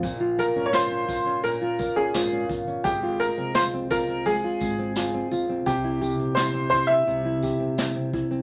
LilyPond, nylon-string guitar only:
\new Staff \with { instrumentName = "Nylon-string guitar" } { \time 4/4 \key f \minor \tempo 4 = 85 bes,16 f'16 bes'16 des'16 f'16 des'16 f'16 des'16 bes,16 f'16 bes'16 des'16 f'16 des'16 f'16 des'16 | aes16 f'8 c'16 f'16 c'16 f'16 c'16 aes16 f'8 c'16 f'16 c'16 f'16 c'16 | c16 e'16 g'16 c'16 e'16 c'16 e'8 c16 e'16 g'16 c'16 e'16 c'16 e'16 c'16 | }